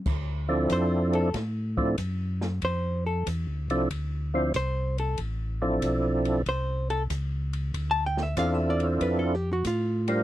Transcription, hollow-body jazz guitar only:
X:1
M:4/4
L:1/16
Q:"Swing" 1/4=94
K:Ddor
V:1 name="Hollow-body jazz guitar"
z4 c2 A2 z8 | c2 A2 z8 c2 A2 | z8 c2 A2 z4 | z a g e f e d c B A G ^F =F4 |]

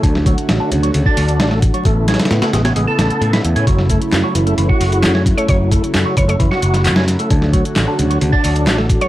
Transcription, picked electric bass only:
X:1
M:4/4
L:1/16
Q:1/4=132
K:F#m
V:1 name="Picked electric bass" clef=bass
D,,3 z A,,, z D,, z D,, z D,,2 A,,,3 z | A,,,3 z A,, z A,,, z A,,, z A,,, z A,, z E,, A,, | F,,,3 z F,, z F,,, z F,,, z F,,,2 F,,3 z | F,,,3 z F,, z F,,, z F,,, z F,,,2 F,,3 z |
D,,3 z A,,, z D,, z D,, z D,,2 A,,,3 z |]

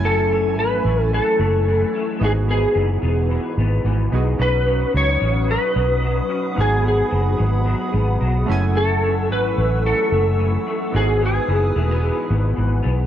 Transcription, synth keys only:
X:1
M:4/4
L:1/8
Q:"Swing 16ths" 1/4=110
K:F#dor
V:1 name="Synth keys"
[A,CEg]6- [A,CEg] z | [B,DFG]6- [B,DFG] [B,DFG] | [CDFB]8 | [B,DFG]6- [B,DFG] [A,CEg]- |
[A,CEg]6- [A,CEg] z | [B,DFG]8 |]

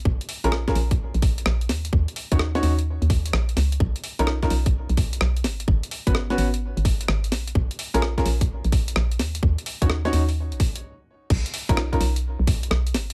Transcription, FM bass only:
X:1
M:4/4
L:1/16
Q:"Swing 16ths" 1/4=128
K:D#m
V:1 name="FM bass" clef=bass
A,,, z2 A,,,3 A,,,3 A,,,3 A,,,2 D,,2 | D,, z2 D,,3 D,,3 D,,3 A,,,2 C,,2 | B,,, z2 B,,,3 B,,,3 B,,,3 B,,,2 G,,,2 | G,,, z2 G,,,3 G,,,3 G,,,3 G,,,2 A,,,2 |
A,,, z2 A,,,3 A,,,3 A,,,3 A,,,2 D,,2 | D,, z2 D,,3 D,,3 A,,,3 z4 | B,,, z2 B,,,3 B,,,3 B,,,3 B,,,2 G,,,2 |]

